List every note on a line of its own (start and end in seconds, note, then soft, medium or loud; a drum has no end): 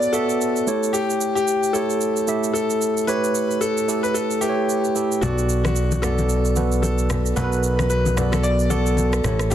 0.00 0.13 B3 medium
0.00 0.13 F#4 medium
0.00 0.14 A4 medium
0.00 0.68 C#5 medium
0.00 0.14 D5 loud
0.00 0.69 D5 medium
0.00 shaker soft
0.13 0.58 B3 medium
0.13 0.58 F#4 medium
0.13 0.96 A4 loud
0.13 0.58 A4 medium
0.13 0.59 E5 medium
0.13 shaker medium
0.29 shaker soft
0.41 shaker medium
0.56 shaker soft
0.67 1.54 A3 medium
0.67 1.54 E4 medium
0.67 1.54 G4 medium
0.67 1.54 C#5 medium
0.67 shaker medium
0.83 shaker medium
0.93 1.34 G4 medium
0.93 shaker medium
1.10 shaker medium
1.21 shaker loud
1.35 1.75 G4 medium
1.35 shaker soft
1.48 shaker medium
1.63 shaker medium
1.73 2.19 A3 medium
1.73 2.19 E4 medium
1.73 2.19 G4 medium
1.73 2.52 A4 medium
1.73 2.19 C#5 medium
1.73 shaker medium
1.90 shaker soft
2.01 shaker medium
2.17 shaker soft
2.27 2.94 A3 medium
2.27 2.94 E4 medium
2.27 2.94 G4 medium
2.27 2.94 E5 medium
2.27 shaker medium
2.44 shaker soft
2.53 3.04 A4 medium
2.53 shaker medium
2.70 shaker soft
2.82 shaker medium
2.97 shaker medium
3.07 3.74 A3 medium
3.07 3.74 E4 medium
3.07 3.74 G4 medium
3.07 3.63 B4 medium
3.07 3.75 C#5 loud
3.07 shaker medium
3.24 shaker medium
3.35 shaker loud
3.51 shaker soft
3.61 4.01 A4 medium
3.61 shaker medium
3.77 shaker medium
3.88 4.33 A3 medium
3.88 4.33 E4 medium
3.88 4.33 G4 medium
3.88 4.33 A4 medium
3.88 shaker medium
4.03 4.15 B4 medium
4.03 shaker soft
4.14 4.42 A4 medium
4.14 shaker medium
4.31 shaker soft
4.41 4.87 A3 medium
4.41 4.87 E4 medium
4.41 5.18 G4 medium
4.41 4.87 G4 medium
4.41 4.50 B4 medium
4.41 shaker medium
4.49 4.90 C#5 medium
4.69 shaker medium
4.84 shaker soft
4.95 5.18 A3 medium
4.95 5.18 E4 medium
4.95 5.18 G4 medium
4.95 5.18 A4 medium
4.95 shaker medium
5.12 shaker medium
5.21 7.33 B1 medium
5.21 5.88 B3 medium
5.21 5.62 F#4 medium
5.21 5.88 F#4 medium
5.21 5.89 A4 medium
5.21 5.89 D5 loud
5.21 low conga medium
5.21 shaker medium
5.38 shaker medium
5.49 shaker loud
5.64 6.04 F#4 medium
5.64 cross-stick medium
5.64 high conga medium
5.64 shaker soft
5.76 shaker medium
5.92 high conga medium
5.92 shaker medium
6.02 6.47 B3 medium
6.02 6.47 F#4 medium
6.02 6.81 A4 medium
6.02 6.48 A4 medium
6.02 6.48 D5 medium
6.02 cross-stick medium
6.02 low conga medium
6.02 shaker medium
6.18 high conga medium
6.18 shaker soft
6.29 shaker medium
6.45 shaker soft
6.56 7.22 B3 medium
6.56 7.22 F#4 medium
6.56 7.23 A4 medium
6.56 7.23 B4 medium
6.56 high conga medium
6.56 shaker medium
6.72 shaker soft
6.82 7.33 A4 medium
6.82 high conga medium
6.82 shaker medium
6.98 shaker soft
7.10 cross-stick medium
7.10 low conga medium
7.10 shaker medium
7.26 shaker medium
7.36 9.21 B1 medium
7.36 8.03 B3 medium
7.36 8.03 F#4 medium
7.36 8.03 A4 medium
7.36 7.45 A#4 medium
7.36 7.88 B4 medium
7.36 low conga medium
7.36 shaker medium
7.44 8.06 B4 loud
7.53 shaker soft
7.63 shaker loud
7.79 cross-stick medium
7.79 high conga medium
7.79 shaker soft
7.90 8.34 B4 medium
7.90 shaker medium
8.06 high conga medium
8.06 shaker medium
8.16 8.61 B3 medium
8.16 8.62 F#4 medium
8.16 8.62 A4 medium
8.16 8.62 D5 medium
8.16 cross-stick medium
8.16 low conga medium
8.16 shaker medium
8.32 8.44 A4 medium
8.32 cross-stick medium
8.32 high conga medium
8.32 shaker soft
8.43 8.69 D5 loud
8.43 shaker medium
8.59 shaker soft
8.70 9.15 B3 medium
8.70 9.15 F#4 medium
8.70 9.53 A4 loud
8.70 9.15 A4 medium
8.70 9.15 D5 medium
8.70 high conga medium
8.70 shaker medium
8.86 shaker soft
8.97 high conga medium
8.97 shaker medium
9.13 cross-stick medium
9.13 shaker soft
9.24 9.55 A1 medium
9.24 9.55 A3 medium
9.24 9.55 E4 medium
9.24 9.55 G4 medium
9.24 9.55 C#5 medium
9.24 cross-stick medium
9.24 low conga medium
9.24 shaker medium
9.39 cross-stick medium
9.39 shaker medium
9.50 9.55 G4 medium
9.50 low conga medium
9.50 shaker medium